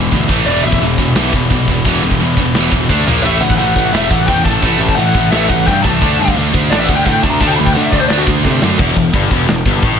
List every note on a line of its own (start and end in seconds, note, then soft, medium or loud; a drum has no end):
0.00 0.11 E1 medium
0.00 0.11 E2 medium
0.00 0.12 B2 medium
0.00 0.13 E3 loud
0.12 0.28 D2 medium
0.12 0.28 E2 loud
0.12 0.29 B2 loud
0.12 0.31 E3 loud
0.12 kick medium
0.12 crash medium
0.29 0.45 A1 medium
0.29 0.46 A2 loud
0.29 0.48 E3 loud
0.29 0.47 A3 loud
0.29 kick loud
0.46 0.63 E1 medium
0.46 0.65 E2 loud
0.46 0.65 B2 medium
0.46 0.66 E3 medium
0.46 0.63 D5 medium
0.46 crash medium
0.64 0.80 A1 medium
0.64 0.80 E2 medium
0.64 0.81 B2 loud
0.64 0.81 E3 medium
0.64 0.81 E5 medium
0.72 kick medium
0.81 0.97 E1 medium
0.81 0.99 E2 medium
0.81 0.99 B2 medium
0.81 1.00 E3 medium
0.81 crash medium
0.98 1.15 E1 medium
0.98 1.15 E2 medium
0.98 1.16 B2 medium
0.98 1.17 E3 loud
0.98 kick medium
1.15 1.32 B1 medium
1.15 1.33 E2 medium
1.15 1.33 B2 medium
1.15 1.34 E3 medium
1.15 snare loud
1.15 crash medium
1.33 1.50 E1 loud
1.33 1.50 E2 medium
1.33 1.51 B2 medium
1.33 1.51 E3 loud
1.33 kick medium
1.50 1.67 B1 medium
1.50 1.67 E2 medium
1.50 1.68 B2 loud
1.50 1.69 E3 loud
1.50 kick medium
1.50 crash medium
1.67 1.84 E1 medium
1.67 1.85 E2 medium
1.67 1.86 B2 medium
1.67 1.87 E3 medium
1.67 kick medium
1.85 2.02 E1 loud
1.85 2.03 E2 medium
1.85 2.04 B2 medium
1.85 2.04 E3 loud
1.85 kick loud
1.85 crash medium
2.03 2.19 E1 medium
2.03 2.21 E2 medium
2.03 2.21 B2 medium
2.03 2.22 E3 medium
2.11 kick medium
2.20 2.37 E2 loud
2.20 2.37 E2 medium
2.20 2.38 B2 medium
2.20 2.38 E3 medium
2.20 crash medium
2.37 2.54 E1 medium
2.37 2.55 E2 medium
2.37 2.56 B2 medium
2.37 2.56 E3 medium
2.37 kick medium
2.54 2.71 E1 medium
2.54 2.71 E2 medium
2.54 2.72 B2 medium
2.54 2.73 E3 medium
2.54 snare loud
2.54 crash medium
2.72 2.89 E1 medium
2.72 2.89 E2 medium
2.72 2.89 B2 medium
2.72 2.89 E3 medium
2.72 kick medium
2.89 3.06 D2 medium
2.89 3.06 D3 medium
2.89 3.06 A3 medium
2.89 3.07 D4 loud
2.89 kick medium
3.06 3.23 A#1 medium
3.06 3.23 A#2 loud
3.06 3.24 F3 medium
3.06 3.24 A#3 loud
3.06 floor tom medium
3.23 3.40 A1 medium
3.23 3.41 A2 medium
3.23 3.41 E3 loud
3.23 3.42 A3 loud
3.23 3.40 E5 medium
3.23 crash medium
3.41 3.57 D2 medium
3.41 3.57 A2 medium
3.41 3.58 E3 medium
3.41 3.59 A3 loud
3.41 3.51 F#5 loud
3.50 kick medium
3.57 3.74 A1 medium
3.57 3.75 A2 medium
3.57 3.76 E3 medium
3.57 3.76 A3 medium
3.57 3.91 F#5 medium
3.57 crash medium
3.76 3.92 A1 medium
3.76 3.92 A2 medium
3.76 3.93 E3 loud
3.76 3.94 A3 loud
3.76 kick medium
3.92 4.09 E1 medium
3.92 4.10 A2 loud
3.92 4.11 E3 loud
3.92 4.12 A3 loud
3.92 4.10 E5 medium
3.92 snare loud
3.92 crash medium
4.10 4.27 A1 medium
4.10 4.28 A2 medium
4.10 4.28 E3 loud
4.10 4.29 A3 loud
4.10 4.27 F#5 loud
4.10 kick medium
4.27 4.44 E2 medium
4.27 4.45 A2 loud
4.27 4.46 E3 loud
4.27 4.47 A3 loud
4.27 4.44 G5 medium
4.27 kick medium
4.27 crash medium
4.44 4.62 A1 medium
4.44 4.61 A2 medium
4.44 4.62 E3 medium
4.44 4.64 A3 medium
4.44 4.93 A5 loud
4.44 kick medium
4.62 4.78 A1 medium
4.62 4.78 A2 medium
4.62 4.79 E3 loud
4.62 4.81 A3 loud
4.62 kick loud
4.62 crash medium
4.79 4.96 A1 medium
4.79 4.96 A2 medium
4.79 4.98 E3 loud
4.79 4.99 A3 medium
4.89 kick medium
4.96 5.14 A2 medium
4.96 5.15 E3 medium
4.96 5.16 A3 loud
4.96 5.29 F#5 medium
4.96 crash medium
5.15 5.31 A1 medium
5.15 5.31 A2 medium
5.15 5.32 E3 medium
5.15 5.34 A3 loud
5.15 kick medium
5.31 5.49 A1 loud
5.31 5.48 A2 medium
5.31 5.49 E3 loud
5.31 5.51 A3 loud
5.31 5.49 E5 medium
5.31 snare loud
5.31 crash medium
5.49 5.66 A1 medium
5.49 5.66 A2 loud
5.49 5.67 E3 medium
5.49 5.68 A3 loud
5.49 5.66 F#5 loud
5.49 kick medium
5.67 5.83 G2 medium
5.67 5.85 A2 medium
5.67 5.86 E3 loud
5.67 5.87 A3 loud
5.67 5.83 G5 medium
5.67 kick medium
5.67 crash medium
5.83 6.01 C2 medium
5.83 6.01 A2 medium
5.83 6.02 E3 medium
5.83 6.32 A5 medium
5.83 kick medium
5.87 6.03 A3 medium
6.02 6.18 D2 medium
6.02 6.20 D3 medium
6.02 6.21 A3 medium
6.02 6.21 D4 medium
6.02 kick loud
6.02 crash medium
6.19 6.35 G2 medium
6.19 6.36 D3 medium
6.19 6.37 A3 medium
6.19 6.38 D4 medium
6.28 kick medium
6.37 6.53 D2 loud
6.37 6.54 D3 medium
6.37 6.54 A3 loud
6.37 6.54 D4 loud
6.37 crash medium
6.54 6.70 D2 medium
6.54 6.70 D3 medium
6.54 6.70 A3 medium
6.54 6.71 D4 medium
6.54 kick medium
6.70 6.88 A1 loud
6.70 6.88 D3 medium
6.70 6.88 A3 loud
6.70 6.89 D4 loud
6.70 6.79 D5 medium
6.70 snare loud
6.70 crash medium
6.79 6.88 E5 medium
6.87 7.05 D2 medium
6.87 7.05 D3 medium
6.87 7.06 A3 loud
6.87 7.06 D4 loud
6.87 6.95 F#5 loud
6.87 kick medium
6.96 7.04 G5 loud
7.04 7.23 A2 medium
7.04 7.22 D3 loud
7.04 7.23 A3 loud
7.04 7.23 D4 loud
7.04 7.12 F#5 medium
7.04 kick loud
7.04 crash medium
7.12 7.22 G5 medium
7.23 7.40 D2 medium
7.23 7.40 D3 medium
7.23 7.40 A3 medium
7.23 7.41 D4 medium
7.23 7.31 A5 loud
7.23 kick medium
7.30 7.39 A#5 loud
7.40 7.57 D2 loud
7.40 7.57 D3 medium
7.40 7.58 A3 medium
7.40 7.58 D4 loud
7.40 7.47 A5 loud
7.40 kick loud
7.40 crash medium
7.47 7.51 G5 loud
7.47 7.57 A5 loud
7.56 7.75 D2 medium
7.56 7.73 D3 medium
7.56 7.73 A3 medium
7.56 7.74 D4 loud
7.56 7.65 B5 loud
7.65 7.73 G5 loud
7.65 kick loud
7.73 7.92 D3 medium
7.73 7.93 A3 loud
7.73 7.93 D4 loud
7.73 7.82 F#5 medium
7.73 crash medium
7.81 7.90 E5 medium
7.91 8.09 D2 medium
7.91 8.09 D3 medium
7.91 8.10 A3 medium
7.91 8.11 D4 loud
7.91 7.99 D5 medium
7.91 kick medium
8.00 8.09 C5 medium
8.09 8.27 D2 loud
8.09 8.25 D3 medium
8.09 8.26 A3 loud
8.09 8.26 D4 loud
8.09 8.18 D5 loud
8.09 snare loud
8.09 crash medium
8.17 8.23 F#4 loud
8.27 8.43 D2 medium
8.27 8.43 D3 medium
8.27 8.44 A3 medium
8.27 8.44 D4 loud
8.27 kick medium
8.44 8.61 C3 medium
8.44 8.61 D3 loud
8.44 8.62 A3 loud
8.44 8.62 D4 loud
8.44 kick medium
8.44 snare medium
8.62 8.79 F#2 loud
8.62 8.78 D3 medium
8.62 8.79 A3 loud
8.62 8.79 D4 loud
8.62 snare loud
8.79 8.95 E1 medium
8.79 8.96 E2 loud
8.79 kick loud
8.79 crash loud
8.79 crash medium
8.96 9.13 E1 medium
8.96 9.10 E2 medium
8.96 kick loud
9.14 9.30 G1 medium
9.14 9.31 G2 medium
9.14 kick loud
9.14 crash medium
9.31 9.47 E1 loud
9.31 9.48 E2 loud
9.31 kick loud
9.48 9.65 E1 medium
9.48 9.62 E2 medium
9.48 snare loud
9.48 crash medium
9.66 9.82 G1 medium
9.66 9.83 G2 loud
9.66 kick loud
9.83 10.00 A1 loud
9.83 10.00 A2 loud
9.83 kick loud
9.83 crash medium